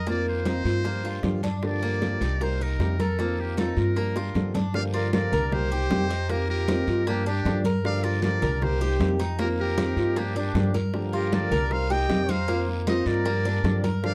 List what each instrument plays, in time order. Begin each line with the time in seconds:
Already playing: upright bass F2
0.07 nylon-string guitar D#3 A#3 C4 F4, cuban tres A#3, muted trumpet D5, high bongo, long guiro
0.26 muted trumpet C5, high bongo, high conga
0.45 nylon-string guitar D#3 A#3 C4 F4, cuban tres D#4, high bongo, high conga, short guiro
0.65 upright bass G2, nylon-string guitar A#3 C4 F4, high bongo, high conga, short guiro
0.84 nylon-string guitar F3 A#3 D4 G4, cuban tres A#3, high bongo, high conga, long guiro
1.04 nylon-string guitar A#3 D4 G4, cuban tres F4, high conga
1.23 upright bass G2, nylon-string guitar D3 F3 A#3 D4 G4, high bongo, low bongo, high conga, short guiro
1.43 cuban tres D4, muted nylon-string guitar stroke, high bongo, high conga, short guiro
1.63 nylon-string guitar D3 F3 A#3 D4 G4, muted trumpet D5, high bongo, high conga, long guiro
1.83 cuban tres A#3, high conga
2.01 nylon-string guitar D3 F3 A#3 D4 G4, high bongo, high conga, short guiro
2.21 upright bass C2, nylon-string guitar A#3 D4 G4, cuban tres D#4, high conga, short guiro
2.40 nylon-string guitar G3 A#3 D#4 G4, cuban tres A#4, muted trumpet C5, high bongo, high conga, long guiro
2.59 nylon-string guitar A#3 D#4 G4, cuban tres D#4, muted trumpet A#4, high conga
2.79 upright bass F2, nylon-string guitar C3 G3 A#3 D#4 G4, high bongo, low bongo, high conga, short guiro
2.99 muted trumpet A4, cuban tres A#4, muted nylon-string guitar stroke, high conga, short guiro
3.18 nylon-string guitar D#3 A#3 C4 F4, cuban tres A#3, high bongo, high conga, long guiro
3.38 muted trumpet G4, high bongo, high conga
3.57 nylon-string guitar D#3 A#3 C4 F4, cuban tres D#4, muted trumpet A4, high bongo, high conga, short guiro
3.76 upright bass G2, nylon-string guitar A#3 C4 F4, muted trumpet A#4, high bongo, high conga, short guiro
3.96 nylon-string guitar F3 A#3 D4 G4, cuban tres A#3, high bongo, high conga, long guiro
4.16 nylon-string guitar A#3 D4 G4, cuban tres F4, high bongo, high conga
4.34 upright bass G2, nylon-string guitar D3 F3 A#3 D4 G4, low bongo, high conga, short guiro
4.54 cuban tres D4, muted nylon-string guitar stroke, low bongo, high conga, short guiro
4.74 nylon-string guitar D3 F3 A#3 D4 G4, flute D5, muted trumpet F5, high bongo, high conga, long guiro
4.94 cuban tres F4, flute A#4, muted trumpet D5, high conga
5.12 nylon-string guitar D3 F3 A#3 D4 G4, flute A#4, muted trumpet D5, high bongo, high conga, short guiro
5.32 upright bass C2, nylon-string guitar A#3 D4 G4, cuban tres A#4, high conga, low conga, short guiro
5.51 nylon-string guitar G3 A#3 D#4 G4, flute G4, muted trumpet C5, high bongo, high conga, low conga, long guiro
5.71 nylon-string guitar A#3 D#4 G4, cuban tres G4, high conga
5.90 upright bass F2, nylon-string guitar C3 G3 A#3 D#4 G4, high bongo, low bongo, high conga, short guiro
6.10 cuban tres D#4, muted nylon-string guitar stroke, short guiro
6.29 nylon-string guitar D#3 A#3 C4 F4, cuban tres A#3, flute G4, muted trumpet A#4, high bongo, high conga, long guiro
6.49 flute G4, muted trumpet A#4, high conga
6.68 nylon-string guitar D#3 A#3 C4 F4, cuban tres D#4, high bongo, high conga, short guiro
6.87 upright bass G2, nylon-string guitar A#3 C4 F4, high bongo, high conga, short guiro
7.07 nylon-string guitar F3 A#3 D4 G4, cuban tres A#3, flute D4, muted trumpet G4, high bongo, high conga, long guiro
7.26 nylon-string guitar A#3 D4 G4, flute D4, cuban tres D4, muted trumpet G4, high bongo, high conga
7.45 upright bass G2, nylon-string guitar D3 F3 A#3 D4 G4, high bongo, low bongo, high conga, short guiro
7.64 cuban tres A#4, muted nylon-string guitar stroke, high bongo, high conga, short guiro
7.84 nylon-string guitar D3 F3 A#3 D4 G4, flute D5, muted trumpet F5, high bongo, high conga, long guiro
8.03 cuban tres F4, flute A#4, muted trumpet D5, high conga
8.22 nylon-string guitar D3 F3 A#3 D4 G4, flute A#4, muted trumpet D5, high bongo, high conga, short guiro
8.42 upright bass C2, nylon-string guitar A#3 D4 G4, cuban tres A#4, high conga, low conga, short guiro
8.61 nylon-string guitar G3 A#3 D#4 G4, flute G4, muted trumpet C5, high bongo, high conga, low conga, long guiro
8.81 nylon-string guitar A#3 D#4 G4, cuban tres G4, high conga
9.00 upright bass F2, nylon-string guitar C3 G3 A#3 D#4 G4, high bongo, low bongo, high conga, short guiro
9.20 cuban tres D#4, muted nylon-string guitar stroke, short guiro
9.39 nylon-string guitar D#3 A#3 C4 F4, cuban tres A#3, flute G4, muted trumpet A#4, high bongo, high conga, long guiro
9.58 flute G4, muted trumpet A#4, high conga
9.77 nylon-string guitar D#3 A#3 C4 F4, cuban tres D#4, high bongo, high conga, short guiro
9.96 upright bass G2, nylon-string guitar A#3 C4 F4, high bongo, high conga, short guiro
10.16 nylon-string guitar F3 A#3 D4 G4, cuban tres A#3, flute D4, muted trumpet G4, high bongo, high conga, long guiro
10.35 nylon-string guitar A#3 D4 G4, cuban tres D4, flute D4, muted trumpet G4, high bongo, high conga
10.55 upright bass G2, nylon-string guitar D3 F3 A#3 D4 G4, high bongo, low bongo, high conga, short guiro
10.74 cuban tres A#4, muted nylon-string guitar stroke, high bongo, high conga, short guiro
10.93 nylon-string guitar D3 F3 A#3 D4 G4, high bongo, high conga, long guiro
11.13 cuban tres F4, flute G4, muted trumpet A#4, high conga
11.32 nylon-string guitar D3 F3 A#3 D4 G4, flute A#4, muted trumpet D5, high bongo, high conga, short guiro
11.51 upright bass C2, nylon-string guitar A#3 D4 G4, cuban tres A#4, high conga, low conga, short guiro
11.71 nylon-string guitar G3 A#3 D#4 G4, flute C5, muted trumpet F5, high bongo, high conga, long guiro
11.90 nylon-string guitar A#3 D#4 G4, cuban tres G4, flute D#5, muted trumpet G5, high conga
12.09 upright bass F2, nylon-string guitar C3 G3 A#3 D#4 G4, high bongo, low bongo, high conga, short guiro
12.28 cuban tres D#4, flute C5, muted trumpet F5, muted nylon-string guitar stroke, high conga, short guiro
12.48 nylon-string guitar D#3 A#3 C4 F4, cuban tres A#3, high bongo, high conga, long guiro
12.68 high conga
12.87 nylon-string guitar D#3 A#3 C4 F4, cuban tres D#4, flute C5, muted trumpet D#5, high bongo, high conga, short guiro
13.06 upright bass G2, nylon-string guitar A#3 C4 F4, flute A#4, muted trumpet D5, high bongo, high conga, short guiro
13.25 nylon-string guitar F3 A#3 D4 G4, cuban tres A#3, high bongo, high conga, long guiro
13.45 nylon-string guitar A#3 D4 G4, cuban tres D4, high bongo, high conga
13.64 upright bass G2, nylon-string guitar D3 F3 A#3 D4 G4, high bongo, low bongo, high conga, short guiro
13.84 cuban tres A#4, muted nylon-string guitar stroke, high bongo, high conga, short guiro
14.03 nylon-string guitar D3 F3 A#3 D4 G4, flute D5, muted trumpet F5, high bongo, long guiro